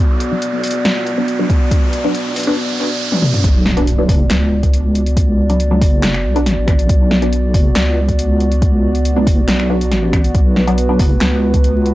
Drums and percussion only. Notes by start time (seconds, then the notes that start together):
0.20 closed hi-hat
0.42 closed hi-hat
0.64 closed hi-hat, open hi-hat
0.71 closed hi-hat
0.85 snare, closed hi-hat
1.07 closed hi-hat
1.28 closed hi-hat
1.50 kick, closed hi-hat
1.71 kick, closed hi-hat
1.93 closed hi-hat
2.15 closed hi-hat
2.36 closed hi-hat, open hi-hat
2.43 closed hi-hat
3.12 high tom
3.22 mid tom
3.34 mid tom
3.44 kick, closed hi-hat
3.66 snare
3.77 closed hi-hat
3.87 closed hi-hat
4.09 kick, open hi-hat
4.30 snare, clap, closed hi-hat
4.63 kick, closed hi-hat
4.74 closed hi-hat
4.95 closed hi-hat
5.06 closed hi-hat
5.17 kick, closed hi-hat
5.50 closed hi-hat
5.60 closed hi-hat
5.81 kick, open hi-hat
6.03 snare, clap, closed hi-hat
6.14 finger snap
6.36 closed hi-hat
6.46 snare, closed hi-hat
6.68 finger snap, kick, closed hi-hat
6.79 closed hi-hat
6.89 kick, closed hi-hat
7.11 snare
7.22 closed hi-hat
7.33 closed hi-hat
7.54 kick, open hi-hat
7.76 snare, clap, closed hi-hat
8.08 kick, closed hi-hat
8.19 closed hi-hat
8.40 closed hi-hat
8.52 closed hi-hat
8.62 kick, closed hi-hat
8.95 closed hi-hat
9.05 closed hi-hat
9.27 kick, open hi-hat
9.48 snare, clap, closed hi-hat
9.60 finger snap
9.81 closed hi-hat
9.92 snare, closed hi-hat
10.13 finger snap, kick, closed hi-hat
10.24 closed hi-hat
10.35 kick, closed hi-hat
10.56 snare
10.67 closed hi-hat
10.78 closed hi-hat
10.99 kick, open hi-hat
11.21 snare, clap, closed hi-hat
11.54 kick, closed hi-hat
11.64 closed hi-hat
11.86 closed hi-hat